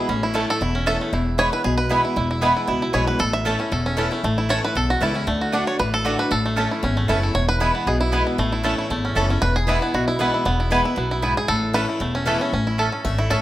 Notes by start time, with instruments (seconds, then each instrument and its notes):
0.09 upright bass A1, steel-string acoustic guitar A2, five-string banjo C#4
0.23 five-string banjo E4
0.34 steel-string acoustic guitar E3 A3 C#4 E4, five-string banjo A3, mandolin C#4 A4 E5 A5
0.50 five-string banjo A4
0.61 upright bass E1, steel-string acoustic guitar E2, five-string banjo E4
0.75 five-string banjo C#4
0.86 steel-string acoustic guitar E3 A3 C#4 E4, mandolin C#4 A4 E5 A5, five-string banjo E5
1.01 five-string banjo A3
1.13 upright bass E1, steel-string acoustic guitar E2, five-string banjo E4
1.38 steel-string acoustic guitar E3 G#3 B3 E4, mandolin B3 E4 B4 G#5, five-string banjo C#5
1.52 steel-string acoustic guitar B3 E4, five-string banjo B4
1.64 upright bass B1, steel-string acoustic guitar B2, five-string banjo G#4
1.78 five-string banjo B4
1.89 steel-string acoustic guitar E3 G#3 B3 E4, mandolin B3 E4 B4 G#5, five-string banjo E4
2.05 five-string banjo E4
2.16 upright bass E1, steel-string acoustic guitar E2, five-string banjo E4
2.31 five-string banjo E4
2.41 steel-string acoustic guitar E3 G#3 B3 E4, mandolin B3 E4 B4 G#5, five-string banjo B3
2.57 five-string banjo E4
2.67 upright bass C#2, steel-string acoustic guitar B2, five-string banjo E4
2.82 five-string banjo E4
2.93 upright bass B1, steel-string acoustic guitar E3 G#3 B3 E4, mandolin B3 E4 B4 G#5, five-string banjo C#5
3.07 five-string banjo B4
3.19 upright bass A1, steel-string acoustic guitar A2, five-string banjo A4
3.33 five-string banjo E5
3.45 steel-string acoustic guitar E3 A3 C#4 E4, five-string banjo A3, mandolin C#4 A4 E5 A5
3.59 five-string banjo C#4, steel-string acoustic guitar C#4 E4
3.72 upright bass E1, steel-string acoustic guitar E2, five-string banjo A4
3.86 five-string banjo C#4
3.97 steel-string acoustic guitar E3 A3 C#4 E4, mandolin C#4 A4 E5 A5, five-string banjo E4
4.11 five-string banjo A3, steel-string acoustic guitar C#4 E4
4.23 upright bass A1, steel-string acoustic guitar A2, five-string banjo A3
4.38 five-string banjo E4
4.49 steel-string acoustic guitar E3 A3 C#4 E4, mandolin C#4 A4 E5 A5, five-string banjo C#5
4.65 five-string banjo B4
4.75 upright bass B1, steel-string acoustic guitar E2, five-string banjo A4
4.90 five-string banjo F#4
5.01 upright bass C#2, steel-string acoustic guitar E3 A3 C#4 E4, mandolin C#4 A4 E5 A5, five-string banjo E4
5.14 five-string banjo C#4, steel-string acoustic guitar C#4 E4
5.27 upright bass D2, steel-string acoustic guitar D3, five-string banjo A3
5.41 five-string banjo F#4
5.52 steel-string acoustic guitar D3 A3 D4 F#4, mandolin A3 F#4 D5 F#5, five-string banjo D4
5.67 five-string banjo C#5
5.79 upright bass A1, steel-string acoustic guitar A2, five-string banjo B4
5.94 five-string banjo A4
6.05 steel-string acoustic guitar D3 A3 D4 F#4, mandolin A3 F#4 D5 F#5, five-string banjo F#4
6.19 five-string banjo B4
6.31 upright bass A1, steel-string acoustic guitar A2, five-string banjo A4
6.46 five-string banjo A3
6.56 steel-string acoustic guitar E3 A3 C#4 E4, mandolin C#4 A4 E5 A5, five-string banjo C#4
6.71 five-string banjo E4
6.83 upright bass G#1, steel-string acoustic guitar E2, five-string banjo C#4
6.97 five-string banjo A3
7.08 upright bass F#1, steel-string acoustic guitar E3 A3 C#4 E4, mandolin C#4 A4 E5 A5, five-string banjo E4
7.22 steel-string acoustic guitar C#4 E4, five-string banjo A4
7.35 upright bass E1, steel-string acoustic guitar E2, five-string banjo C#5
7.49 five-string banjo B4
7.60 steel-string acoustic guitar E3 G#3 B3 E4, mandolin B3 E4 B4 G#5, five-string banjo E4
7.75 five-string banjo B3
7.87 upright bass B1, steel-string acoustic guitar B2, five-string banjo G#4
8.01 five-string banjo E4
8.12 steel-string acoustic guitar E3 G#3 B3 E4, mandolin B3 E4 B4 G#5, five-string banjo B3
8.27 five-string banjo E4
8.38 upright bass A1, steel-string acoustic guitar A2, five-string banjo A3
8.52 five-string banjo E4
8.63 steel-string acoustic guitar E3 A3 C#4 E4, five-string banjo A3, mandolin C#4 A4 E5 A5
8.78 five-string banjo E4
8.90 upright bass G#1, steel-string acoustic guitar E2, five-string banjo A3
9.05 five-string banjo C#4
9.15 upright bass F#1, steel-string acoustic guitar E3 A3 C#4 E4, mandolin C#4 A4 E5 A5, five-string banjo A4
9.29 five-string banjo C#4, steel-string acoustic guitar C#4 E4
9.42 upright bass E1, steel-string acoustic guitar E2, five-string banjo B4
9.56 five-string banjo G#4
9.67 steel-string acoustic guitar E3 G#3 B3 E4, mandolin B3 E4 B4 G#5, five-string banjo E4
9.81 five-string banjo B3, steel-string acoustic guitar B3 E4
9.94 upright bass B1, steel-string acoustic guitar B2, five-string banjo F#4
10.08 five-string banjo E4
10.19 steel-string acoustic guitar E3 G#3 B3 E4, mandolin B3 E4 B4 G#5, five-string banjo B3
10.34 five-string banjo E4
10.45 upright bass E1, steel-string acoustic guitar E2, five-string banjo B3
10.60 five-string banjo E4
10.71 steel-string acoustic guitar E3 G#3 B3 E4, mandolin B3 E4 B4 G#5, five-string banjo B3
10.84 steel-string acoustic guitar B3 E4, five-string banjo E4
10.96 upright bass B1, steel-string acoustic guitar F#2, five-string banjo B3
11.11 five-string banjo E4
11.22 steel-string acoustic guitar G#2, mandolin B3 E4 B4 G#5, five-string banjo E4
11.37 five-string banjo G#4
11.48 upright bass A1, steel-string acoustic guitar A2, five-string banjo A4
11.73 steel-string acoustic guitar E3 A3 C#4 E4, mandolin C#4 A4 E5 A5, five-string banjo B4
11.89 five-string banjo E4
12.00 upright bass E1, steel-string acoustic guitar E2, five-string banjo A3
12.15 five-string banjo C#4
12.26 steel-string acoustic guitar E3 A3 C#4 E4, mandolin C#4 A4 E5 A5, five-string banjo A4
12.39 five-string banjo C#4, steel-string acoustic guitar C#4 E4
12.53 upright bass A1, five-string banjo C#4
12.67 five-string banjo E4
12.78 mandolin C#4 A4 E5 A5, five-string banjo A4
12.92 five-string banjo C#4
13.05 upright bass G#1, five-string banjo A3, steel-string acoustic guitar E5
13.18 five-string banjo E4, steel-string acoustic guitar A4
13.30 upright bass A1, mandolin C#4 A4 E5 A5, five-string banjo A4, steel-string acoustic guitar C#5